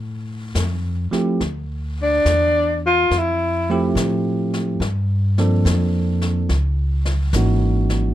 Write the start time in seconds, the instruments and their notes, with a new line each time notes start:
Already playing: upright bass A2
0.55 upright bass F2, snare, hi-hat pedal
1.11 tine electric piano F3 A3 C4 E4 G4, muted upright bass stroke, snare
1.41 upright bass D2, brush sweep, snare
2.02 tenor saxophone D4
2.25 upright bass E2, snare, hi-hat pedal
2.86 tenor saxophone F4
3.10 upright bass F2, brush sweep, snare
3.18 tenor saxophone E4
3.70 tine electric piano F3 A3 C4 E4 G4
3.95 upright bass A2, snare, hi-hat pedal
4.54 snare
4.80 upright bass G2, brush sweep, snare
5.38 tine electric piano F3 A#3 C4 D4 A4, snare
5.65 upright bass F2, snare, hi-hat pedal
6.21 snare
6.49 upright bass C#2, brush sweep, snare
7.05 snare
7.33 upright bass G#1, tine electric piano E3 A#3 C#4 D#4 F#4, snare, hi-hat pedal
7.90 snare